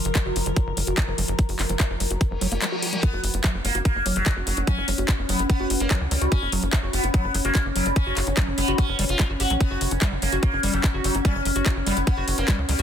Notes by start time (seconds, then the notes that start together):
Already playing: F3 A#4
0.05 F#1, closed hi-hat
0.15 F#3, kick, clap, closed hi-hat
0.26 F#1 F#4
0.36 F#1 F3, open hi-hat
0.46 F#1 F3, closed hi-hat
0.56 F#3, kick, closed hi-hat
0.67 F#1
0.77 F#1 F#3, open hi-hat
0.87 F#1 F#4, closed hi-hat
0.98 F3, kick, clap, closed hi-hat
1.08 F#1 F3
1.18 F#1 F#3, open hi-hat
1.28 F#1, closed hi-hat
1.39 F#3, kick, closed hi-hat
1.49 F#1 F#4, open hi-hat
1.59 F#1 F3, clap, open hi-hat
1.69 F#1 F3, closed hi-hat
1.80 F#3, kick, clap, closed hi-hat
1.90 F#1
2.00 F#1 F#3, open hi-hat
2.11 F#1 F#4, closed hi-hat
2.21 F3, kick, closed hi-hat, reverse cymbal
2.31 F#1 F3
2.41 F#1 F#3, open hi-hat
2.52 F#1 A#3, closed hi-hat
2.62 G3, clap, closed hi-hat
2.72 F#4
2.82 F#4, open hi-hat
2.93 G3, closed hi-hat
3.03 F#3 B3 C#4, kick, closed hi-hat
3.13 F#1 F#4
3.23 F#1, open hi-hat
3.34 F#1 F3, closed hi-hat
3.44 F#3, kick, clap, closed hi-hat
3.54 F#1 F3
3.65 F#1 F#3 A#3, open hi-hat
3.75 F#1 F#4, closed hi-hat
3.85 A#3, kick, closed hi-hat
3.95 F#1 F3
4.06 F#1 F#3, open hi-hat
4.16 F#1 F3 F#3, closed hi-hat
4.26 F#3, kick, clap, closed hi-hat
4.36 F#1 F#4
4.47 F#1 F#3, open hi-hat
4.57 F#1 F3, closed hi-hat
4.67 F#3 C#4, kick, closed hi-hat
4.78 F#1 F3
4.88 F#1 F#3, open hi-hat
4.98 F#1 F#4, closed hi-hat
5.08 kick, clap, closed hi-hat
5.19 F#1 F3
5.29 F#1 F#3 B3, open hi-hat
5.39 F#1 F3, closed hi-hat
5.50 F#3 B3, kick, closed hi-hat
5.60 F#1 F#4
5.70 F#1, open hi-hat
5.80 F#1 F3 A#3, closed hi-hat
5.91 F#3, kick, clap, closed hi-hat
6.01 C#2 F3
6.11 C#2 F#3 G3, open hi-hat
6.21 C#2 F#4, closed hi-hat
6.32 C#4, kick, closed hi-hat
6.42 F#1 F3
6.52 F#1 F#3, open hi-hat
6.63 F#1 F3, closed hi-hat
6.73 F#3, kick, clap, closed hi-hat
6.83 F#1 F#4
6.93 F#1 B3, open hi-hat
7.04 F#1 F3, closed hi-hat
7.14 F#3 B3, kick, closed hi-hat
7.24 F#1 F3
7.34 F#1 F#3, open hi-hat
7.45 F#1 A#3 F#4, closed hi-hat
7.55 kick, clap, closed hi-hat
7.65 F#1 F3
7.76 F#1 F#3 G3, open hi-hat
7.86 F#1 F3, closed hi-hat
7.96 F#3 C#4, kick, closed hi-hat
8.06 F#1 F#4
8.17 F#1, clap, open hi-hat
8.27 F#1 F3, closed hi-hat
8.37 F#3, kick, clap, closed hi-hat
8.47 F#1 F3
8.58 F#1 F#3 B3, open hi-hat
8.68 F#1 F#4, closed hi-hat
8.78 C#4, kick, closed hi-hat
8.89 F#1 F3
8.99 F#1 G3, open hi-hat
9.09 F#1 F4, closed hi-hat
9.19 G3, kick, clap, closed hi-hat
9.30 G1 F#4
9.40 G1 F#4 G4, open hi-hat
9.50 A#1 F#3, closed hi-hat
9.61 F#3 B3, kick, closed hi-hat
9.71 F#1 F#4
9.81 F#1, open hi-hat
9.91 F#1 F3, closed hi-hat
10.02 G3, kick, clap, closed hi-hat
10.12 F#1 F3
10.22 F#1 F#3 A#3, open hi-hat
10.32 F#1 F#4, closed hi-hat
10.43 kick, closed hi-hat
10.53 F#1 F3
10.63 F#1 G3, open hi-hat
10.74 F#1 F3 F#3, closed hi-hat
10.84 F#3, kick, clap, closed hi-hat
10.94 F#1 F#4
11.04 F#1 F#3, open hi-hat
11.15 F#1 F3, closed hi-hat
11.25 G3 C#4, kick, closed hi-hat
11.35 F#1 F3
11.45 F#1 F#3, open hi-hat
11.56 F#1 F#4, closed hi-hat
11.66 kick, clap, closed hi-hat
11.76 F#1 F3
11.87 F#1 G3 B3, open hi-hat
11.97 F#1 F3, closed hi-hat
12.07 F#3 B3, kick, closed hi-hat
12.17 F#1 F#4
12.28 F#1, open hi-hat
12.38 F#1 F3 A#3, closed hi-hat
12.48 G3, kick, clap, closed hi-hat
12.58 C#2 F3
12.69 C#2 F#3 G3, open hi-hat
12.79 C#2 F#4, closed hi-hat